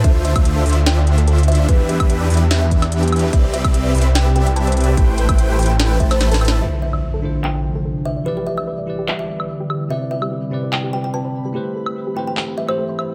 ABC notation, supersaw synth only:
X:1
M:4/4
L:1/16
Q:"Swing 16ths" 1/4=146
K:Am
V:1 name="Supersaw synth"
[D,DFce]3 [D,D]3 [D,DFce]8- [D,DFce]2 | [E,DGBe]3 [E,DGe]3 [E,DGBe]8- [E,DGBe]2 | [Cde]3 [CGBde]3 [CGBde]8- [CGBde]2 | [A,EBcg]3 [A,Ecg]3 [A,EBcg]4 [A,EBca]3 [A,EBca]3 |
z16 | z16 | z16 | z16 |]